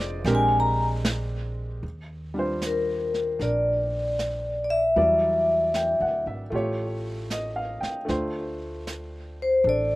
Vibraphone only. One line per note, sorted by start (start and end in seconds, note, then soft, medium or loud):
0.35 0.56 G#5 medium
0.60 0.84 A#5 medium
2.66 3.45 A#4 medium
3.42 4.63 D5 medium
4.64 4.72 D5 medium
4.70 6.23 E5 medium
9.42 9.67 C5 medium
9.69 9.96 D5 medium